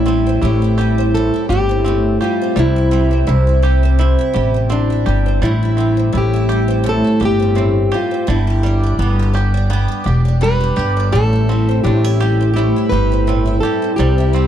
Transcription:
Already playing: A1 A2 G3 E4 G4
0.06 G3 C4
0.27 C4
0.42 A1 A2 E4 G4
0.62 E4
0.78 G3 G4
0.98 C4
1.14 A2 A4
1.34 E4
1.49 G1 G3 G4
1.69 C4
1.84 A2 C4
2.21 G3 F4 G4
2.41 C4
2.56 C2 C3 G3 E4
2.76 E4
2.91 G3 C4
3.11 C4
3.27 C2 C3 E4
3.47 E4
3.62 G3 G4
3.83 C4
3.99 C3 E4
4.19 E4
4.33 A1 G3 G4
4.54 C4
4.70 C3 C4 D4
4.90 E4
5.06 G1 G3 G4
5.26 C4
5.42 A1 A2 G3 E4
5.63 E4
5.77 G3 C4
5.97 C4
6.13 A1 A2 E4
6.18 G4
6.34 E4
6.49 G3 G4
6.68 C4
6.84 A2
6.89 A4
7.04 E4
7.20 G1 G3 G4
7.25 G4
7.40 C4
7.55 A2 C4
7.91 G3 F4 G4
8.11 C4
8.27 G1 D3 G3 E4
8.47 G4
8.63 G3 D4
8.83 D4
8.99 G1 G3 B3
9.19 G4
9.34 D4 G4
9.54 D4
9.70 G3 B3
9.88 G4
10.04 E1 D4 G4
10.25 D4
10.41 G3 B4
10.60 G4
10.76 G1 D4 G4
10.97 D4
11.12 A1 A2 G3 A4
11.33 E4
11.49 G3 C4
11.69 C4
11.84 A1 A2 D4 G4
12.04 E4
12.20 G3 G4
12.41 C4
12.54 A2 E4 G4
12.76 E4
12.89 G1 G3 G4 B4
13.12 C4
13.27 A2 C4
13.46 E4
13.60 G3 G4 A4
13.82 C4
13.96 C2 C3 G3 G4
14.18 E4
14.33 G3 C4

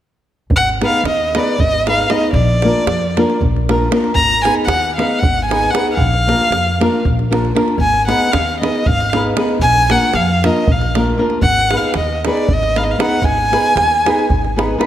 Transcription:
0.50 G#1, davul low
0.56 F#5
0.81 B3 D#4 G#4 B4, davul high
0.85 F5
1.04 D#2, davul high
1.09 D#5
1.35 B3 D#4 G#4 B4 D5, davul high
1.48 davul high
1.59 G#1 D#5, davul low
1.73 davul high
1.87 B3 D#4 G#4 B4 F5, davul high
2.10 B3 D#4 G#4 B4 D#5, davul high
2.22 davul high
2.33 A#1 D5, davul low
2.62 A#3 D4 F4 A#4, davul high
2.86 F2, davul high
3.17 A#3 D4 F4 A#4, davul high
3.30 davul high
3.41 A#1, davul low
3.56 davul high
3.69 A#3 D4 F4 A#4, davul high
3.91 A#3 D4 F4 A#4, davul high
4.04 davul high
4.15 G#1 A#5, davul low
4.42 B3 D#4 G#4 G#5, davul high
4.47 B4
4.66 D#2 F#5, davul high
4.96 B3 D#4 G#4 F5, davul high
5.00 B4
5.11 davul high
5.19 G#1 F#5
5.23 davul low
5.38 davul high
5.45 G#5
5.50 B3 D#4 G#4 B4, davul high
5.71 B3 F#5
5.75 D#4 G#4 B4, davul high
5.87 davul high
5.92 F5 F#5
5.97 A#1, davul low
6.14 davul high
6.27 A#3 D4 F4 A#4, davul high
6.41 davul high
6.51 F2, davul high
6.67 davul high
6.80 A#3 D4 F4 A#4, davul high
7.05 A#1, davul low
7.19 davul high
7.31 A#3 D4 F4 A#4, davul high
7.45 davul high
7.55 A#3 D4 F4 A#4, davul high
7.68 davul high
7.78 G#1 G#5, davul low
8.07 B3 D#4 G#4 B4 F#5, davul high
8.31 D#2 F5, davul high
8.61 B3 D#4 G#4 B4 D#5, davul high
8.76 davul high
8.86 G#1 F5, davul low
9.00 davul high
9.13 B3 D#4 G#4 B4, davul high
9.36 B3 D#4 G#4 B4, davul high
9.49 davul high
9.59 A#1 G#5, davul low
9.89 A#3 D4 F4 A#4 F#5, davul high
10.14 F2 F5, davul high
10.44 A#3 D4 F4 A#4 D#5, davul high
10.57 davul high
10.68 A#1, davul low
10.72 F5
10.81 davul high
10.95 A#3 D4 F4 A#4, davul high
11.18 A#3 D4 F4 A#4
11.30 davul high
11.42 G#1 F#5, davul low
11.71 B3 D#4 G#4 B4, davul high
11.77 F5
11.94 D#2 D#5, davul high
12.25 B3 D#4 G#4 B4, davul high
12.29 D5
12.37 davul high
12.49 G#1, davul low
12.53 D#5
12.63 davul high
12.76 B3 D#4 G#4 B4 F5, davul high
12.84 D#5
12.91 F5
12.98 B3 D#4 G#4 B4, davul high
13.03 F#5
13.11 davul high
13.22 G#1 G#5, davul low
13.38 davul high
13.52 B3 D#4 G#4 B4, davul high
13.66 davul high
13.75 D#2, davul high
14.06 B3 D#4 G#4 B4, davul high
14.19 davul high
14.30 G#1, davul low
14.45 davul high
14.56 B3 D#4 G#4 B4, davul high
14.78 B3 D#4 G#4 B4, davul high

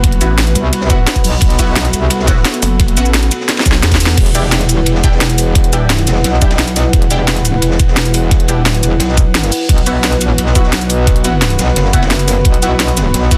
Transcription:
Already playing: F#1 B3 F#4 B4 F#5 B5
0.04 kick, closed hi-hat, ride
0.12 closed hi-hat
0.21 A1 B3 E4 F#4, closed hi-hat, ride, shaker
0.38 snare, closed hi-hat, ride
0.47 closed hi-hat, ride
0.55 C2, closed hi-hat, ride, shaker
0.73 closed hi-hat, ride
0.81 snare
0.90 B3 E4 F#4, kick, closed hi-hat, ride, shaker
1.07 snare, closed hi-hat, ride
1.16 kick, closed hi-hat, shaker
1.24 B1, open hi-hat, shaker
1.41 B1 A4, kick, closed hi-hat, ride
1.50 closed hi-hat
1.59 B3 E4 F#4, kick, closed hi-hat, ride, shaker
1.76 B1, snare, closed hi-hat, ride
1.85 snare, closed hi-hat
1.93 C2, closed hi-hat, ride, shaker
2.10 closed hi-hat, ride
2.19 snare
2.27 B3 E4 F#4, kick, snare, closed hi-hat, ride, shaker
2.37 snare
2.45 snare, closed hi-hat, ride
2.54 closed hi-hat, shaker
2.62 F#1, open hi-hat, ride, shaker
2.80 kick, closed hi-hat, ride
2.88 closed hi-hat
2.97 A1 B3 E4 F#4, closed hi-hat, ride, shaker
3.05 shaker
3.14 snare, closed hi-hat, ride
3.23 closed hi-hat, ride
3.31 closed hi-hat, ride, shaker
3.41 snare
3.49 snare, closed hi-hat, ride
3.57 snare, ride
3.60 snare
3.66 B1, kick, snare, closed hi-hat, ride, shaker
3.72 snare, ride
3.74 snare
3.83 E2, snare, closed hi-hat, ride
3.91 kick, snare, closed hi-hat, ride, shaker
3.95 snare
4.00 E2, open hi-hat, shaker
4.06 snare
4.17 E1 E4 B4 F#5, kick, closed hi-hat, crash, ride
4.25 B4, closed hi-hat
4.35 E1 D4 E4 G4, closed hi-hat, ride, shaker
4.51 snare, closed hi-hat, ride
4.60 snare, closed hi-hat
4.69 closed hi-hat, ride, shaker
4.86 E1, closed hi-hat, ride
4.95 snare
5.04 D4 E4 G4, kick, closed hi-hat, ride, shaker
5.08 F#5
5.12 snare
5.20 E1, snare, closed hi-hat, ride
5.30 closed hi-hat, shaker
5.38 open hi-hat, ride, shaker
5.55 kick, closed hi-hat, ride
5.64 closed hi-hat
5.73 D4 E4 G4, closed hi-hat, ride, shaker
5.89 snare, closed hi-hat, ride
5.98 closed hi-hat, ride
6.07 E1, snare, closed hi-hat, ride, shaker
6.16 snare
6.24 B1, snare, closed hi-hat, ride
6.34 snare
6.42 D4 E4 G4, kick, closed hi-hat, ride, shaker
6.51 snare, ride
6.59 snare, closed hi-hat
6.67 closed hi-hat, ride, shaker
6.76 snare, open hi-hat, ride, shaker
6.93 E1, kick, closed hi-hat, ride
7.02 closed hi-hat
7.10 E1 D4 E4 G4, closed hi-hat, ride, shaker
7.28 snare, closed hi-hat, ride
7.36 snare, closed hi-hat
7.45 closed hi-hat, ride, shaker
7.62 E1, closed hi-hat, ride
7.71 snare
7.80 kick, closed hi-hat, ride, shaker
7.88 snare
7.96 E1, snare, closed hi-hat, ride
8.05 closed hi-hat, shaker
8.14 open hi-hat, ride, shaker
8.31 kick, closed hi-hat, ride
8.40 closed hi-hat
8.48 D4 E4 G4, closed hi-hat, ride, shaker
8.57 D#1
8.66 snare, closed hi-hat, ride
8.74 closed hi-hat, ride
8.83 E1, closed hi-hat, ride, shaker
9.00 B1, snare, closed hi-hat, ride
9.09 snare
9.17 kick, closed hi-hat, ride, shaker
9.34 snare, closed hi-hat, ride
9.43 snare, closed hi-hat, shaker
9.51 open hi-hat, shaker
9.69 B1 B3 F#4, kick, closed hi-hat, ride
9.78 closed hi-hat
9.86 B1 B3 E4 F#4, closed hi-hat, ride, shaker
10.04 snare, closed hi-hat, ride
10.12 snare, closed hi-hat
10.21 closed hi-hat, ride, shaker
10.38 B1, closed hi-hat, ride
10.46 snare
10.55 B3 E4 F#4, kick, closed hi-hat, ride, shaker
10.63 snare
10.73 B1, snare, closed hi-hat, ride
10.81 closed hi-hat, shaker
10.89 open hi-hat, ride, shaker
10.98 B5
11.07 kick, closed hi-hat, ride
11.16 closed hi-hat
11.24 B3 E4 F#4, closed hi-hat, ride, shaker
11.42 snare, closed hi-hat, ride
11.50 closed hi-hat, ride
11.59 B1, snare, closed hi-hat, ride, shaker
11.68 snare
11.76 F#1, snare, closed hi-hat, ride
11.85 snare
11.93 B3 E4 F#4, kick, closed hi-hat, ride, shaker
12.02 snare, ride
12.11 snare, closed hi-hat
12.19 closed hi-hat, ride, shaker
12.28 snare, open hi-hat, ride, shaker
12.45 B1, kick, closed hi-hat, ride
12.54 closed hi-hat
12.62 B1 B3 E4 F#4, closed hi-hat, ride, shaker
12.79 snare, closed hi-hat, ride
12.88 snare, closed hi-hat
12.97 snare, closed hi-hat, ride, shaker
13.14 B1, snare, closed hi-hat, ride
13.22 snare
13.31 B3 E4 F#4, kick, closed hi-hat, ride, shaker

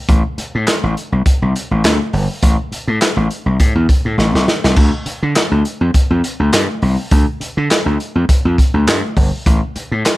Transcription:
0.09 A1, kick, closed hi-hat
0.38 muted slap bass stroke, closed hi-hat
0.55 A2
0.67 snare, clap, closed hi-hat
0.83 A1
0.97 closed hi-hat
1.12 C2
1.26 kick, closed hi-hat
1.42 C2
1.56 closed hi-hat
1.71 A1
1.84 D2, snare, clap, closed hi-hat
2.13 G1, open hi-hat
2.42 A1, kick, closed hi-hat
2.72 muted slap bass stroke, closed hi-hat
2.88 A2
3.01 snare, clap, closed hi-hat
3.17 A1
3.31 closed hi-hat
3.46 C2
3.60 A2, kick, closed hi-hat
3.75 E2
3.89 kick, closed hi-hat
4.05 A2
4.18 A1, snare
4.35 C2, snare
4.48 snare
4.64 C2, snare
4.76 D2, kick, splash
5.06 muted slap bass stroke, closed hi-hat
5.23 D3
5.35 snare, clap, closed hi-hat
5.51 D2
5.65 closed hi-hat
5.81 F2
5.94 muted slap bass stroke, kick, closed hi-hat
6.10 F2
6.24 closed hi-hat
6.40 D2
6.53 G2, snare, clap, closed hi-hat
6.82 C2, open hi-hat
7.11 D2, kick, closed hi-hat
7.40 muted slap bass stroke, closed hi-hat
7.57 D3
7.70 snare, clap, closed hi-hat
7.86 D2
8.00 closed hi-hat
8.15 F2
8.29 muted slap bass stroke, kick, closed hi-hat
8.45 F2
8.58 kick, closed hi-hat
8.74 D2
8.87 G2, snare, clap, closed hi-hat
9.17 G1, kick, open hi-hat
9.46 A1, kick, closed hi-hat
9.76 muted slap bass stroke, closed hi-hat
9.92 A2
10.05 snare, clap, closed hi-hat

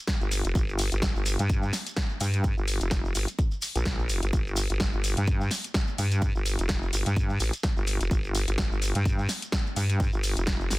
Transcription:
0.07 kick, snare, closed hi-hat, shekere
0.21 G1, shekere
0.32 open hi-hat, shekere
0.45 F1, closed hi-hat, shekere
0.55 G1, kick, closed hi-hat, shekere
0.69 shekere
0.79 open hi-hat, shekere
0.92 G1, closed hi-hat, shekere
1.02 kick, snare, closed hi-hat, shekere
1.16 G1, shekere
1.26 open hi-hat, shekere
1.39 G2, closed hi-hat, shekere
1.49 kick, closed hi-hat, shekere
1.63 shekere
1.73 snare, open hi-hat, shekere
1.87 closed hi-hat, shekere
1.97 kick, snare, closed hi-hat, shekere
2.09 shekere
2.21 G2, open hi-hat, shekere
2.33 closed hi-hat, shekere
2.44 kick, closed hi-hat, shekere
2.57 G1, shekere
2.68 open hi-hat, shekere
2.81 F1, closed hi-hat, shekere
2.91 kick, snare, closed hi-hat, shekere
3.05 shekere
3.15 G1, open hi-hat, shekere
3.28 closed hi-hat, shekere
3.39 kick, closed hi-hat, shekere
3.51 shekere
3.62 open hi-hat, shekere
3.75 A#1, closed hi-hat, shekere
3.85 kick, snare, closed hi-hat
3.99 shekere
4.09 open hi-hat, shekere
4.23 G1, closed hi-hat, shekere
4.33 G1, kick, closed hi-hat, shekere
4.47 shekere
4.56 open hi-hat, shekere
4.70 G1, closed hi-hat, shekere
4.80 kick, snare, closed hi-hat, shekere
4.93 G1, shekere
5.04 open hi-hat, shekere
5.17 G2, closed hi-hat, shekere
5.27 kick, closed hi-hat, shekere
5.41 shekere
5.51 snare, open hi-hat, shekere
5.64 closed hi-hat, shekere
5.74 kick, snare, closed hi-hat, shekere
5.87 shekere
5.98 G2, open hi-hat, shekere
6.11 closed hi-hat, shekere
6.22 kick, closed hi-hat, shekere
6.35 G1, shekere
6.46 open hi-hat, shekere
6.59 F1, closed hi-hat, shekere
6.69 kick, snare, closed hi-hat, shekere
6.83 shekere
6.93 G1, open hi-hat, shekere
7.06 G2, closed hi-hat, shekere
7.17 kick, closed hi-hat, shekere
7.29 shekere
7.40 A1, open hi-hat, shekere
7.53 closed hi-hat, shekere
7.63 kick, snare, closed hi-hat, shekere
7.77 G1, shekere
7.87 open hi-hat, shekere
8.01 F1, closed hi-hat, shekere
8.11 G1, kick, closed hi-hat, shekere
8.24 shekere
8.35 open hi-hat, shekere
8.48 G1, closed hi-hat, shekere
8.58 kick, snare, closed hi-hat, shekere
8.72 G1, shekere
8.82 open hi-hat, shekere
8.95 G2, closed hi-hat, shekere
9.06 kick, closed hi-hat, shekere
9.19 shekere
9.29 snare, open hi-hat, shekere
9.42 closed hi-hat, shekere
9.52 kick, snare, closed hi-hat, shekere
9.66 shekere
9.76 G2, open hi-hat, shekere
9.90 closed hi-hat, shekere
10.00 kick, closed hi-hat, shekere
10.12 G1, shekere
10.23 open hi-hat, shekere
10.37 F1, closed hi-hat, shekere
10.47 kick, snare, closed hi-hat, shekere
10.61 shekere
10.70 G1, snare, open hi-hat, shekere

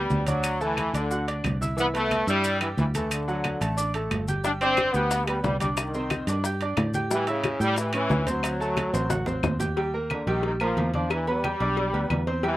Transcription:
Already playing: G3 B3 B4 B5
0.10 D2, high conga, low timbale, maracas
0.27 F#3 D4 D5 D6, high conga, high timbale, maracas
0.44 high conga, high timbale, claves, maracas
0.61 E3 A3 A4 A5, high conga, maracas
0.77 high conga, high timbale, low timbale, claves, maracas
0.94 D2 D3 D4 D5 D6, high timbale, maracas
1.11 F#4 F#5 F#6, maracas
1.28 D4 D5 D6, high conga, high timbale, maracas
1.44 C2, high conga, high timbale, low timbale, claves, maracas
1.61 E4 E5 E6, high conga, maracas
1.77 E3 B3 E4 E5, high conga, maracas
1.94 A3 B3 B4 B5, high conga, high timbale, maracas
2.11 high conga, high timbale, low timbale, claves, maracas
2.27 G2 G3 E4 E5 E6, high conga, maracas
2.44 high conga, high timbale, maracas
2.61 E3 G3 G4 G5, high conga, high timbale, claves, maracas
2.77 D2 E3, high conga, low timbale, maracas
2.95 E3 A3 A4 A5, high conga, high timbale, maracas
3.11 D3, high conga, high timbale, claves, maracas
3.28 F#3 F#4 F#5, high conga, maracas
3.44 high conga, high timbale, low timbale, claves, maracas
3.61 A1 A3 A4 A5, high conga, high timbale, maracas
3.77 D4 D5 D6, high conga, maracas
3.94 A3 A4 A5, high conga, high timbale, maracas
4.11 G1, high conga, high timbale, low timbale, claves, maracas
4.28 G4 G5 G6, high conga, maracas
4.44 G3 D4 G4 G5, high bongo, high conga, maracas
4.61 C4 D4 D5 D6, high bongo, high conga, high timbale, maracas
4.77 high bongo, high conga, high timbale, low timbale, claves, maracas
4.93 D2 B3 G4 G5 G6, high bongo, maracas
5.11 high bongo, high conga, high timbale, maracas
5.26 G3 B3 B4 B5, high bongo, high conga, high timbale, claves, maracas
5.43 C2 G3, high bongo, low bongo, high conga, low timbale, maracas
5.60 G3 D4 D5 D6, high conga, high timbale, maracas
5.77 D#3, high bongo, high conga, high timbale, claves, maracas
5.94 C4 C5 C6, high bongo, high conga, maracas
6.10 high bongo, high conga, high timbale, low timbale, claves, maracas
6.27 G2 D4 D5 D6, high conga, high timbale, maracas
6.44 G4 G5 G6, high bongo, high conga, maracas
6.61 D4 D5 D6, high bongo, high conga, high timbale, maracas
6.77 A2, high bongo, low bongo, high conga, high timbale, low timbale, claves, maracas
6.94 G4 G5 G6, high bongo, high conga, maracas
7.10 E3 G3 G4 G5, high bongo, high conga, maracas
7.27 C#3 E4 E5 E6, high bongo, high conga, high timbale, maracas
7.44 high bongo, high conga, high timbale, low timbale, claves, maracas
7.60 A2 G3 G4 G5 G6, high bongo, high conga, maracas
7.76 E3, high bongo, high conga, high timbale, maracas
7.93 E3 C#4 C#5 C#6, high bongo, high conga, high timbale, claves, maracas
8.09 D2, high bongo, low bongo, high conga, low timbale, maracas
8.27 F#3 C4 C5 C6, high conga, high timbale, maracas
8.43 high bongo, high conga, high timbale, claves, maracas
8.60 A3 A4 A5, high bongo, high conga, maracas
8.77 high bongo, high conga, high timbale, low timbale, claves, maracas
8.93 A1 C4 C5 C6, high timbale, maracas
9.09 F#4 F#5 F#6, high bongo, high conga, high timbale, maracas
9.26 C4 C5 C6, high bongo, low conga, low timbale, maracas
9.43 D#2, high bongo, low bongo, low conga, low timbale, claves, maracas
9.59 G4 G5 G6, high bongo, low conga, low timbale, maracas
9.76 G3 G4 G5, cowbell, low agogo
9.94 A#3 A#4 A#5, high conga
10.10 D3, cowbell, high conga, low timbale, low agogo, claves
10.27 A#1 D#3 G3 G4 G5, cowbell, high conga, low agogo
10.43 D#3, cowbell, high conga
10.60 F3 A#3 A#4 A#5, high conga, low agogo, claves
10.77 E2, cowbell, high conga, low timbale, low agogo
10.94 F3 D4 D5 D6, cowbell, high conga
11.10 E3, cowbell, low agogo, claves
11.27 G3 B3 B4 B5, high conga, low agogo
11.44 G4 G5 G6, cowbell, high conga, low timbale, low agogo, claves
11.60 B1 D4 D5 D6, cowbell, low agogo
11.77 cowbell, high conga
11.93 D2 B3 B4 B5, high conga, low agogo
12.10 E2, cowbell, high conga, low timbale, low agogo, claves
12.27 C4 C5 C6, cowbell
12.43 E3 G3 G4 G5, cowbell, high conga, low agogo

